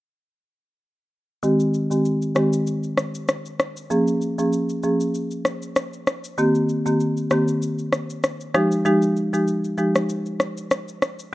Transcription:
1.43 marimba D#3 G#3 C4 G4, shaker
1.60 shaker
1.74 shaker
1.91 marimba D#3 G#3 C4 G4, shaker
2.05 shaker
2.22 shaker
2.35 marimba D#3 G#3 C4 G4, cross-stick, shaker
2.53 shaker
2.67 shaker
2.83 shaker
2.97 cross-stick, shaker
3.15 shaker
3.28 cross-stick, shaker
3.46 shaker
3.60 cross-stick, shaker
3.77 shaker
3.90 marimba F3 A#3 C#4 G#4, shaker
4.08 shaker
4.22 shaker
4.38 marimba F3 A#3 C#4 G#4, shaker
4.53 shaker
4.69 shaker
4.83 marimba F3 A#3 C#4 G#4, shaker
5.00 shaker
5.14 shaker
5.31 shaker
5.45 cross-stick, shaker
5.62 shaker
5.76 cross-stick, shaker
5.93 shaker
6.07 cross-stick, shaker
6.24 shaker
6.38 marimba D#3 A#3 C4 G4, shaker
6.55 shaker
6.69 shaker
6.86 marimba D#3 A#3 C4 G4, shaker
7.00 shaker
7.17 shaker
7.30 marimba D#3 A#3 C4 G4, cross-stick, shaker
7.48 shaker
7.62 shaker
7.79 shaker
7.93 cross-stick, shaker
8.10 shaker
8.23 cross-stick, shaker
8.41 shaker
8.54 marimba F3 G#3 D#4 G4, cross-stick, shaker
8.72 shaker
8.85 marimba F3 G#3 D#4 G4, shaker
9.02 shaker
9.16 shaker
9.33 marimba F3 G#3 D#4 G4, shaker
9.48 shaker
9.64 shaker
9.78 marimba F3 G#3 D#4 G4, shaker
9.95 cross-stick, shaker
10.09 shaker
10.26 shaker
10.40 cross-stick, shaker
10.57 shaker
10.71 cross-stick, shaker
10.88 shaker
11.02 cross-stick, shaker
11.19 shaker

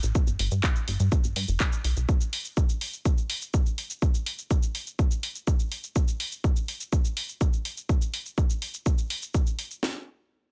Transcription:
0.03 analog synth bass A1, shaker
0.15 kick, shaker
0.27 analog synth bass G1, shaker
0.39 analog synth bass G1, open hi-hat
0.51 analog synth bass G2, shaker
0.64 kick, clap, shaker
0.76 shaker
0.88 analog synth bass G1, open hi-hat
1.00 analog synth bass G2, shaker
1.12 kick, shaker
1.24 analog synth bass G1, shaker
1.36 analog synth bass G2, open hi-hat
1.48 analog synth bass F1, shaker
1.60 kick, clap, shaker
1.72 shaker
1.84 analog synth bass B1, open hi-hat
1.97 analog synth bass B1, shaker
2.09 kick, shaker
2.21 shaker
2.33 open hi-hat
2.45 shaker
2.57 kick, shaker
2.69 shaker
2.81 open hi-hat
2.93 shaker
3.05 kick, shaker
3.18 shaker
3.30 open hi-hat
3.42 shaker
3.54 kick, shaker
3.66 shaker
3.78 open hi-hat
3.90 shaker
4.02 kick, shaker
4.14 shaker
4.26 open hi-hat
4.39 shaker
4.51 kick, shaker
4.63 shaker
4.75 open hi-hat
4.87 shaker
4.99 kick, shaker
5.11 shaker
5.23 open hi-hat
5.35 shaker
5.47 kick, shaker
5.60 shaker
5.72 open hi-hat
5.84 shaker
5.96 kick, shaker
6.08 shaker
6.20 open hi-hat
6.32 shaker
6.44 kick, shaker
6.56 shaker
6.68 open hi-hat
6.81 shaker
6.93 kick, shaker
7.05 shaker
7.17 open hi-hat
7.29 shaker
7.41 kick, shaker
7.53 shaker
7.65 open hi-hat
7.77 shaker
7.89 kick, shaker
8.02 shaker
8.14 open hi-hat
8.26 shaker
8.38 kick, shaker
8.50 shaker
8.62 open hi-hat
8.74 shaker
8.86 kick, shaker
8.98 shaker
9.10 open hi-hat
9.22 shaker
9.34 kick, shaker
9.47 shaker
9.59 open hi-hat
9.71 shaker
9.83 snare

